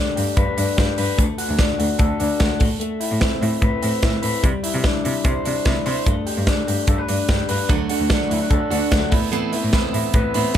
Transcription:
Already playing: A3 D4 G4
0.16 G2 G4, open hi-hat
0.37 G2 B4, kick, closed hi-hat
0.57 G2 D4, open hi-hat
0.77 G2 G4, kick, snare, closed hi-hat
0.98 G2 B4, open hi-hat
1.18 D2 A3, kick, closed hi-hat
1.38 F#4, open hi-hat
1.49 D2
1.59 D4, kick, snare, closed hi-hat
1.78 D2 F#4, open hi-hat
1.99 D2 A4, kick, closed hi-hat
2.19 D2 D4, open hi-hat
2.39 D2 F#4, kick, snare, closed hi-hat
2.60 A2 A3, kick, open hi-hat
2.80 A3, closed hi-hat
3.00 E4, open hi-hat
3.11 A2
3.20 C4, kick, snare, closed hi-hat
3.41 A2 E4, open hi-hat
3.62 A2 B4, kick, closed hi-hat
3.82 A2 C4, open hi-hat
4.02 A2 E4, kick, snare, closed hi-hat
4.22 A2 B4, open hi-hat
4.43 C3 G3, kick, closed hi-hat
4.63 E4, open hi-hat
4.74 C3
4.84 D4, kick, snare, closed hi-hat
5.04 C3 E4, open hi-hat
5.24 C3 C5, kick, closed hi-hat
5.45 C3 D4, open hi-hat
5.65 C3 E4, kick, snare, closed hi-hat
5.86 C3 C5, open hi-hat
6.06 G2 A3, kick, closed hi-hat
6.26 G4, open hi-hat
6.37 G2
6.47 D4, kick, snare, closed hi-hat
6.67 G2 G4, open hi-hat
6.87 G2 A4, kick, closed hi-hat
6.98 B4
7.08 G2 D4, open hi-hat
7.28 G2 G4, kick, snare, closed hi-hat
7.49 G2 B4, open hi-hat
7.69 D2 D3 F#3 A3 D4 F#4, kick, closed hi-hat
7.89 A3 D4 F#4, open hi-hat
8.00 D2
8.09 F#3 A3 D4 F#4, kick, snare, closed hi-hat
8.30 D2 E4, open hi-hat
8.40 F#4
8.50 D2 A4, kick, closed hi-hat
8.70 D2 A3 D4 F#4, open hi-hat
8.90 D2 F#3 A3 D4 F#4, kick, snare, closed hi-hat
9.11 A2 A3 B3 C4 E4, kick, open hi-hat
9.31 A2 E3 A3 B3 C4 E4, closed hi-hat
9.52 B3 C4 E4, open hi-hat
9.64 A2
9.72 E3 B3 C4 E4, kick, snare, closed hi-hat
9.93 A2 E4, open hi-hat
10.14 A2 B4, kick, closed hi-hat
10.34 A2 B3 C4 E4, open hi-hat
10.54 E3 E4, snare, closed hi-hat

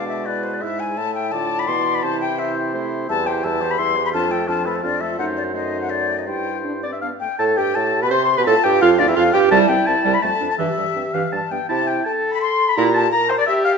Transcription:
Already playing: B2 G#3 D4 D5
0.08 E5
0.26 E4 B4 D5
0.43 C5
0.54 D5
0.62 G#2 E4 E5
0.80 G#5
0.97 A2 A3 E4 A5
1.15 G5
1.32 D3 F4 D5 A5
1.59 B5
1.68 B2 E3 E4 C6
1.95 B5
2.03 C3 E3 C5 A5
2.21 G5
2.38 C5 E5
2.74 A3 E4 C5
3.09 E2 G3 E4 E5 A5
3.26 E3 G4 C5 G5
3.44 E2 G3 E4 E5 A5
3.61 E3 G4 C5
3.71 B5
3.78 E2 G3 E4 E5 C6
3.96 E3 G4 C5
4.06 B5
4.13 F2 F3 D4 F4 A5
4.31 A3 F4 A4 G5
4.48 F2 F3 D4 F4 A5
4.66 A3 F4 A4 B4
4.76 C5
4.83 F2 F3 D4 F4 D5
5.01 A3 F4 A4 E5
5.18 F#2 A3 D#4 C5 F#5
5.37 D5
5.54 A3 D#4 C5 D#5
5.81 F#5
5.90 D5
6.19 D#5
6.27 G2 G3 E4 C5 G5
6.64 D4
6.83 C4 D5
6.92 E5
7.01 B3 D4 F5
7.20 A3 G5
7.38 A2 A4 A5
7.57 G2 G4 G5
7.75 A2 G4 A4 A5
8.02 B2 B4 B5
8.10 C3 C5 C6
8.38 B2 B4 B5
8.46 A2 F4 A4 A5
8.63 G2 G4 G5
8.81 F2 F4 F5
8.99 D2 D4 D5
9.08 E2 E4 E5
9.16 F2 F4 F5
9.33 G2 G4 G5
9.51 C2 G3 E4 A5
9.68 C2 C4 G5
9.86 C2 E4 A5
10.05 C2 G3
10.13 B5
10.22 F2 A3 A4 A5
10.40 F2 D4
10.49 A5
10.58 G2 E3 G4 E5
10.78 G2 G3
10.96 G2 C4
11.13 G2 E3 F5
11.32 G2 G3 A5
11.51 G2 B3 G5
11.69 C3 E4 A5
11.87 G5
12.05 A4 A5
12.32 B5
12.41 C6
12.68 B5
12.76 A#2 E4 G4 A#5
12.94 A5
13.12 A#4 A#5
13.29 C5
13.38 D5
13.47 G4 E5
13.65 F5

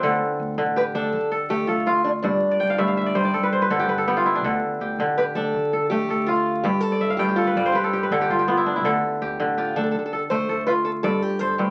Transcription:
Already playing: B3 C4 D4 E4 F4 G4
0.03 D2 D3 A4
0.39 D2
0.58 A1 D3
0.76 G4 B4
0.95 D2 D4 A4
1.13 D3
1.32 A4
1.50 D2 A3 G4
1.67 D2 F4 A4
1.87 F4
2.04 D4
2.23 G1 G2 D4
2.51 D5
2.60 G1 G5
2.70 F5
2.78 D2 G2 E5
2.87 F5
2.97 E5
3.06 D5
3.15 G1 G3 C5
3.24 D5
3.34 G2 A4
3.43 B4
3.52 C5
3.62 B4
3.70 G1 D3 A4
3.79 G4
3.88 G1 B4
3.98 A4
4.08 B3 G4
4.17 F4
4.26 E4
4.35 D4
4.43 D2 D3 A4
4.80 D2 G4
4.98 A1 D3
5.18 G4 B4
5.35 D2 D4 A4
5.54 D3
5.73 A4
5.90 D2 A3 G4
6.09 D2 A4
6.27 F4
6.63 G1 G2 G4
6.81 A4
6.92 D5
7.00 G1 E5
7.10 F5
7.17 D2 G2 G4 G5
7.29 G4
7.36 F4 A4
7.47 B4
7.55 G1 G3 D5
7.66 C5
7.72 G2 G4 B4
7.84 A4
7.93 G4
8.03 B4
8.11 G1 D3 A4
8.21 G4
8.29 G1 F4
8.39 G4
8.48 B3 F4
8.57 E4
8.66 D4
8.76 E4
8.84 D2 D3 A4
9.21 D2 G4
9.40 A1 D3
9.58 F4 G4
9.76 D2 D4 A4
9.83 A4
9.91 D3 A4
9.99 A4
10.06 A4
10.13 A4
10.30 D2 A3 C5
10.49 D2 A4
10.67 F4 B4
10.85 A4
11.03 G1 G2 A4 D5
11.22 G4
11.39 G1 A4 C5
11.58 D2 G2 G4

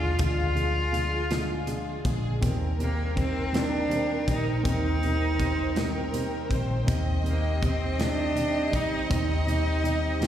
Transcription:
Already playing: D#2 F4 G#4 D5 G#5
0.19 D2 D3 F3 G#3, kick, closed hi-hat
0.24 F4
0.55 D3 F3 G#3, closed hi-hat
0.92 D3 F3 G#3, closed hi-hat
1.30 D3 F3 G#3, snare, closed hi-hat
1.67 D3 F3 G#3, closed hi-hat
2.05 A#1 D3 F3 G#3 G#4, kick, closed hi-hat
2.41 D#2 D#3 G3 C4 A#4 C5 G5, kick, closed hi-hat
2.79 D#3 G3 A#3 C4, closed hi-hat
3.16 D#3 G3 C4, kick, closed hi-hat
3.53 D#3 G3 C4, snare, closed hi-hat
3.57 D4
3.89 D#3 G3 C4, closed hi-hat
4.28 A#1 D#3 G3 C4 D#4, kick, closed hi-hat
4.64 D#2 D#3 G3 C4, kick, closed hi-hat
4.68 D#4
5.03 D#3 G3 C4, closed hi-hat
5.39 D#3 G3 C4 C5, kick, closed hi-hat
5.75 D#3 G3 C4 A#4, snare, closed hi-hat
6.13 D#3 G3 C4, closed hi-hat
6.49 A#1 D#3 G3 C4 C5, kick, closed hi-hat
6.85 D#2 D#3 G3 C4 G4 D#5, kick, closed hi-hat
7.24 D#3 G3 A#3 C4, closed hi-hat
7.62 D#3 G3 C4, kick, closed hi-hat
7.99 D#3 G3 C4 D4, snare, closed hi-hat
8.35 D#3 G3 C4, closed hi-hat
8.72 A#1 D#3 G3 C4 D#4, kick, closed hi-hat
9.09 D#2 D#3 G3 C4 D#4, kick, closed hi-hat
9.46 D#3 G3 C4, closed hi-hat
9.84 D#3 G3 C4, closed hi-hat
10.21 D#3 G3 C4, snare, closed hi-hat

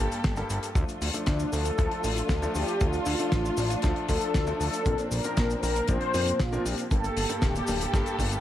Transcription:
Already playing: A#3 G4 A4
0.00 G2 G3 A#3 D4 A4
0.12 closed hi-hat, cabasa
0.24 G1, kick, snare, closed hi-hat, cabasa
0.36 G2 G3 A#3 D4 A4, closed hi-hat, cabasa
0.50 G1, closed hi-hat, cabasa
0.63 closed hi-hat, cabasa
0.75 D2 F3 A3 D4 F4 A4, kick, closed hi-hat, cabasa
0.89 closed hi-hat, cabasa
1.01 D2, open hi-hat, cabasa
1.14 F3 A3 D4 A4, closed hi-hat, cabasa
1.26 D2 D4, kick, snare, closed hi-hat, cabasa
1.39 closed hi-hat, cabasa
1.52 D2 F3 A3 D4 A4, open hi-hat, cabasa
1.65 closed hi-hat, cabasa
1.78 D2 F3 A3 D4 A4, kick, closed hi-hat, cabasa
1.91 closed hi-hat
2.04 A1 F3 A3 D4 A4, open hi-hat, cabasa
2.17 closed hi-hat, cabasa
2.29 D2, kick, snare, closed hi-hat, cabasa
2.42 F3 A3 D4 A4, closed hi-hat, cabasa
2.55 D2 G4, open hi-hat, cabasa
2.68 closed hi-hat, cabasa
2.81 D2 F3 A3 D4 F4 A4, kick, closed hi-hat, cabasa
2.93 closed hi-hat, cabasa
3.06 D2, open hi-hat, cabasa
3.19 F3 A3 D4 A4, closed hi-hat, cabasa
3.32 A1, kick, snare, closed hi-hat, cabasa
3.45 closed hi-hat, cabasa
3.57 A1 F3 A3 D4 A4, open hi-hat, cabasa
3.70 closed hi-hat, cabasa
3.82 D2 F3 A3 D4 A4, kick, snare, closed hi-hat, cabasa
3.96 closed hi-hat
4.09 D2 F3 A3 D4 A4, kick, open hi-hat, cabasa
4.21 closed hi-hat, cabasa
4.34 D2, kick, snare, closed hi-hat, cabasa
4.47 F3 A3 D4 A4, closed hi-hat, cabasa
4.60 D2 A4, open hi-hat, cabasa
4.73 closed hi-hat, cabasa
4.86 A#1 A#2 F3 A#3 C4 D4 A#4, kick, closed hi-hat, cabasa
4.98 closed hi-hat, cabasa
5.11 A#1 A#4, open hi-hat, cabasa
5.24 A#2 F3 C4 D4 A#4, closed hi-hat, cabasa
5.37 A#1, kick, snare, closed hi-hat, cabasa
5.50 closed hi-hat, cabasa
5.63 A#1 A#2 F3 C4 D4 A#4, open hi-hat, cabasa
5.76 closed hi-hat, cabasa
5.88 A#1 A#2 F3 C4 D4 A#4 C5, kick, closed hi-hat, cabasa
6.01 closed hi-hat
6.14 F2 A#2 F3 C4 D4 A#4, open hi-hat, cabasa
6.27 closed hi-hat, cabasa
6.39 A#1 F4, kick, snare, closed hi-hat, cabasa
6.52 A#2 F3 C4 D4 A#4, closed hi-hat, cabasa
6.65 A#1 G4, open hi-hat, cabasa
6.78 closed hi-hat, cabasa
6.91 G1 G2 G3 A#3 D4 G4 A4, kick, closed hi-hat, cabasa
7.04 closed hi-hat, cabasa
7.17 G1, open hi-hat, cabasa
7.29 G2 G3 A#3 D4 A4, closed hi-hat, cabasa
7.42 D1 G4, kick, snare, closed hi-hat, cabasa
7.56 closed hi-hat, cabasa
7.67 D1 G2 G3 A#3 D4 A4, open hi-hat, cabasa
7.81 closed hi-hat, cabasa
7.94 G1 G2 G3 A#3 D4 A4, kick, snare, closed hi-hat, cabasa
8.06 closed hi-hat, cabasa
8.19 G1 G2 G3 A#3 D4 A4, kick, open hi-hat, cabasa
8.31 closed hi-hat, cabasa

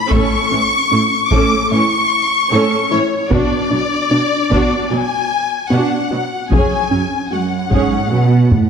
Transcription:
Already playing: B5
0.11 A2 A3 C#4 A4 C#6, taiko
0.51 A2 E3 C#4
0.91 A2 A3 C#4 E4
1.31 A2 A3 C#4 A4 D6, taiko
1.71 A2 E3 C#4 E4 C#6
2.51 A2 A3 C#4 A4
2.91 A2 E3 C#4 E4 C#5
3.31 B2 B3 D4 F#4 D5, taiko
3.71 B2 F#3 B3 D4
4.11 B2 B3 D4
4.51 B2 B3 D4 F#4, taiko
4.91 B2 F#3 B3 F#4 G#5
5.70 B2 B3 D4 F#4 F#5
6.11 B2 F#3 B3 F#4
6.51 F#2 F#3 C#4 G#4 G#5, taiko
6.91 F#2 F#3 C#4
7.31 F#2 G#3 C#4 F#4 F#5
7.71 G#2 F#3 C#4 G#4, taiko
8.11 B2 F#3 C#4 F#4
8.51 A2, taiko low-mid

